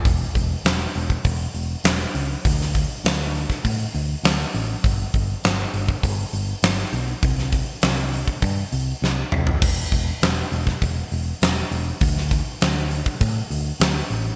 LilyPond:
<<
  \new Staff \with { instrumentName = "Picked electric bass" } { \clef bass \time 4/4 \key d \mixolydian \tempo 4 = 100 e,,8 e,,8 e,,8 e,,8 e,,8 e,,8 e,,8 cis,8 | d,4 d,4 a,8 d,8 d,8 a,,8 | g,,8 g,,8 g,,8 g,,8 g,,8 g,,8 g,,8 b,,8 | c,4 c,4 g,8 c,8 c,8 c,8 |
e,,8 e,,8 e,,8 e,,8 e,,8 e,,8 e,,8 e,,8 | d,4 d,4 a,8 d,8 d,8 a,,8 | }
  \new DrumStaff \with { instrumentName = "Drums" } \drummode { \time 4/4 <hho bd>8 <hho bd>8 <hho sn>8 hho16 bd16 <hho bd>8 hho8 <hho sn>8 hho8 | <hho bd>16 sn16 <hho bd>8 <hho sn>8 hho16 <bd sn>16 <hho bd>8 hho8 <hho sn>8 hho8 | <hho bd>8 <hho bd>8 <hho sn>8 hho16 bd16 <hho bd>8 hho8 <hho sn>8 hho8 | <hho bd>16 sn16 <hho bd>8 <hho sn>8 hho16 bd16 <hho bd>8 hho8 sn8 toml16 tomfh16 |
<cymc hho bd>8 <hho bd>8 <hho sn>8 hho16 <bd sn>16 <hho bd>8 hho8 <hho sn>8 hho8 | <hho bd>16 sn16 <hho bd>8 <hho sn>8 hho16 bd16 <hho bd>8 hho8 <hho sn>8 hho8 | }
>>